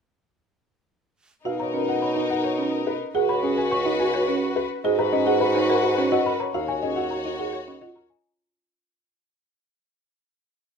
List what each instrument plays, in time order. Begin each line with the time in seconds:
1.45 bassoon B2, alto flute D#4, string section D#4 A#4, marimba F#4, grand piano F5
1.60 grand piano C#5, celesta A#5
1.74 marimba C#4, grand piano A#4
1.88 grand piano F#5
2.02 grand piano C#5, celesta B5
2.16 marimba D#4, grand piano D#5
2.30 grand piano F#5
2.44 grand piano C#5
2.58 marimba C#4
2.87 grand piano B4
3.15 bassoon C#2, string section F#4 B4, alto flute F#4, marimba G#4, grand piano F#5
3.29 grand piano C#5, celesta B5
3.43 marimba C#4, grand piano G#4
3.57 grand piano G#5
3.71 grand piano C#5, celesta C#6
3.85 marimba D#4, grand piano D#5
3.99 grand piano G#5
4.14 grand piano C#5
4.28 marimba C#4
4.56 grand piano B4
4.84 bassoon G#2, alto flute F#4, string section F#4 B4, marimba G#4, grand piano D#5
4.99 grand piano B4, celesta A#5
5.12 marimba C#4, grand piano G#4, celesta D#5
5.26 marimba G#4, grand piano F#5
5.41 grand piano B4, celesta B5
5.55 marimba D#4, grand piano C#5
5.69 marimba A#4, grand piano F#5
5.83 grand piano B4
5.98 marimba C#4, grand piano C#5
6.12 marimba F#4, celesta D#5, grand piano F#5
6.26 grand piano A#4, celesta B5
6.40 grand piano C#5, celesta A#5
6.53 bassoon D#2, alto flute F#4, string section F#4 C#5, marimba F#4, grand piano F5
6.68 grand piano C#5, celesta G#5
6.82 marimba C#4, grand piano G#4, celesta D#5
6.96 marimba F#4, grand piano F#5
7.10 grand piano C#5, celesta A#5
7.25 marimba D#4, grand piano D#5
7.39 marimba G#4, grand piano F#5
7.53 grand piano C#5
7.68 marimba C#4, grand piano D#5
7.81 marimba F4, celesta D#5, grand piano F#5
7.96 grand piano A#4, celesta A#5
8.10 grand piano D#5, celesta G#5